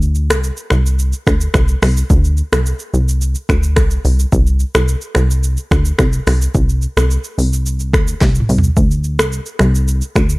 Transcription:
Already playing: D2
0.02 shaker
0.15 shaker
0.30 C2, finger snap, cross-stick, shaker
0.44 shaker
0.57 shaker
0.70 C2, finger snap, cross-stick, shaker
0.86 shaker
0.99 shaker
1.13 shaker
1.27 D2, finger snap, kick, cross-stick, shaker
1.41 shaker
1.54 C2, finger snap, kick, cross-stick, shaker
1.68 shaker
1.82 C2, finger snap, cross-stick, open hi-hat, shaker
1.97 shaker
2.10 D2, kick, shaker
2.24 shaker
2.37 shaker
2.52 C2, finger snap, cross-stick, shaker
2.66 shaker
2.79 shaker
2.93 C2, shaker
3.09 shaker
3.21 shaker
3.35 shaker
3.49 D2, finger snap, kick, cross-stick, shaker
3.63 shaker
3.76 C2, finger snap, kick, cross-stick, shaker
3.91 shaker
4.05 C2, open hi-hat, shaker
4.19 shaker
4.32 C2, kick, shaker
4.47 shaker
4.60 shaker
4.75 C2, finger snap, cross-stick, shaker
4.88 shaker
5.01 shaker
5.15 C2, finger snap, cross-stick, shaker
5.31 shaker
5.43 shaker
5.57 shaker
5.71 D2, finger snap, kick, cross-stick, shaker
5.85 shaker
5.99 C2, finger snap, kick, cross-stick, shaker
6.13 shaker
6.27 C2, finger snap, cross-stick, open hi-hat, shaker
6.42 shaker
6.55 C2, kick, shaker
6.69 shaker
6.82 shaker
6.97 C2, finger snap, cross-stick, shaker
7.11 shaker
7.24 shaker
7.38 C2, open hi-hat, shaker
7.53 shaker
7.66 shaker
7.80 shaker
7.93 D2, finger snap, kick, cross-stick, shaker
8.08 shaker
8.21 C2, kick, snare, shaker
8.35 shaker
8.40 mid tom
8.49 C2, open hi-hat, shaker
8.58 floor tom
8.64 shaker
8.77 D2, kick, shaker
8.91 shaker
9.04 shaker
9.19 C2, finger snap, cross-stick, shaker
9.33 shaker
9.46 shaker
9.59 C2, finger snap, cross-stick, shaker
9.75 shaker
9.88 shaker
10.01 shaker
10.16 D2, finger snap, kick, cross-stick, shaker
10.30 shaker

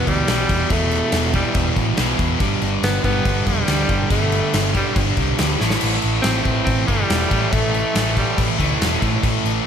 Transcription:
Already playing: E2 B2 E3
0.07 D2 G3, kick, crash
0.27 B1 E2 B2 E3, snare, crash
0.49 E1, kick, crash
0.69 E1 E2 B2 E3 A3, kick, crash
0.91 crash
1.12 E1, snare, crash
1.33 E2 B2 E3 G3, kick, crash
1.54 E1, kick, crash
1.76 A1, kick, crash
1.97 B1 E2 B2 E3, snare, crash
2.19 E2, kick, crash
2.40 G1 G2 D3 G3, kick, crash
2.62 G1, crash
2.83 G1 B3, snare, crash
3.04 G1 G2 D3 G3 B3, kick, crash
3.25 G1, kick, crash
3.47 F1 G3, kick, crash
3.68 D2 G2 D3 G3, snare, crash
3.89 G1, kick, crash
4.10 G1 G2 D3 G3 A3, kick, crash
4.32 crash
4.54 G1, snare, crash
4.74 G2 D3 G3, kick, crash
4.96 G1, kick, crash
5.17 C2, kick, crash
5.38 D2 G2 D3 G3, snare, crash
5.60 A1 A2 E3 A3, snare
5.70 snare
5.81 A1, crash
6.02 A1, crash
6.22 A1 A2 E3 C4, snare, crash
6.27 A3
6.43 A1 C4, kick, crash
6.64 A1 C4, kick, crash
6.87 G1 A2 E3 G3 A3, kick, crash
7.10 E1, snare, crash
7.30 A1 A2 E3 A3, kick, crash
7.52 A1 A3, kick, crash
7.74 crash
7.94 A1 A2 E3 A3, snare, crash
8.17 G3, kick, crash
8.38 A1, kick, crash
8.58 D2 A2 E3 A3, kick, crash
8.80 E1, snare, crash
9.01 A2 E3 A3, kick, crash
9.23 A1, kick, crash
9.44 A1, crash

